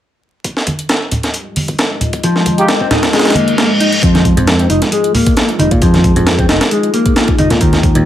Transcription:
0.44 G#3 F4 G4 D#5, kick, closed hi-hat
0.57 snare
0.67 kick, closed hi-hat, high conga
0.79 closed hi-hat
0.89 snare, closed hi-hat
1.11 closed hi-hat, low conga
1.23 snare, closed hi-hat
1.34 closed hi-hat
1.56 closed hi-hat, open hi-hat, high conga
1.68 kick, closed hi-hat
1.79 snare, closed hi-hat
2.01 closed hi-hat, low conga
2.13 kick, closed hi-hat
2.23 F3 G#4, kick, closed hi-hat
2.36 snare
2.46 kick, closed hi-hat, high conga
2.58 G#3 D#4 F4 G4, closed hi-hat
2.68 snare, closed hi-hat
2.80 C4, kick
2.91 D#4, snare, closed hi-hat, low conga
3.03 snare, closed hi-hat
3.13 G#3, snare, closed hi-hat, reverse cymbal
3.19 snare, closed hi-hat
3.25 snare, closed hi-hat
3.30 snare, closed hi-hat
3.35 A#3, closed hi-hat, high conga
3.48 closed hi-hat
3.58 A#3, snare, closed hi-hat
3.80 D#4, closed hi-hat
3.92 closed hi-hat
4.03 F2 F3 D#4 F4 G#4, kick, closed hi-hat
4.15 snare, closed hi-hat, high conga
4.25 kick, closed hi-hat
4.37 F2, closed hi-hat, low conga
4.47 snare, closed hi-hat
4.59 C4, closed hi-hat
4.70 F1 D#4, closed hi-hat
4.82 snare, closed hi-hat
4.92 G#3, closed hi-hat
5.04 closed hi-hat
5.14 A#3, open hi-hat, low conga
5.26 kick, closed hi-hat
5.37 A#3, snare, closed hi-hat
5.49 closed hi-hat
5.59 F1 D#4, closed hi-hat, high conga
5.71 A#2, kick, closed hi-hat
5.82 F2 F3, kick, closed hi-hat
5.94 snare, closed hi-hat, high conga
6.04 kick, closed hi-hat
6.16 F2, closed hi-hat, low conga
6.27 snare, closed hi-hat
6.39 C4, kick, closed hi-hat
6.49 F1 D#4, snare, closed hi-hat
6.61 snare, closed hi-hat
6.71 G#3, closed hi-hat
6.83 closed hi-hat
6.94 A#3, closed hi-hat
7.06 kick, closed hi-hat
7.16 A#3, snare, closed hi-hat
7.28 kick, closed hi-hat
7.38 F1 D#4, closed hi-hat, high conga
7.50 A#2, snare, closed hi-hat, low conga
7.61 D#2 D#3 F#3 C#5, kick, closed hi-hat
7.73 snare, closed hi-hat, high conga
7.83 kick, closed hi-hat
7.95 D#2, closed hi-hat, low conga

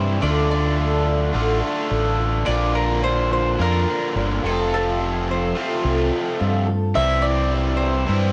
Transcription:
Already playing: G2 C3 E3 G3 C4 E4 G4 C5 D5
0.20 D2 D3 A3 D4 F4 A4 D5
0.51 D4 F4 D5
0.77 D3 A3 D4 F4 A4
1.04 D4 F4 A4
1.33 A1 D3 A3 D4 F4 A4
1.61 F4 A4
1.65 D4
1.88 A1 D3 A3 D4 F4 A4
2.17 D4 F4 A4
2.46 A#1 A#2 D3 A#3 C4 D4 F4 D5
2.74 C4 D4 F4 A#4
3.01 A#2 A#3 C4 D4 F4 C5
3.31 C4 D4 F4 C5
3.58 F2 A#2 D3 A#3 D4 A#4
3.62 C4 F4
3.88 C4 D4 F4
4.15 G1 A#2 A#3 C4 D4 F4
4.43 F1 F2 C3 F3 A3 C4 F4 A4
4.72 F2 F3 A3 C4 F4 A4
5.00 A3 C4 F4 A4
5.27 F2 F3 A3 C4 F4 A4
5.31 C5
5.55 F2 C3 F3 A3 C4 F4 A4
5.83 C2 A3 C4 F4
5.87 A4
6.11 A3 C4 F4 A4
6.39 F2 G2 F3 A3 C4 F4 A4
6.66 A3 C4 F4 A4
6.95 C2 C3 E3 G3 C4 E4 G4 D5 E5
7.22 G4 D5
7.26 E4
7.51 C4 E4 G4 D5
7.77 G4 C5 D5
7.82 E4
8.06 G2 C3 E3 G3 C4 E4 G4 D5

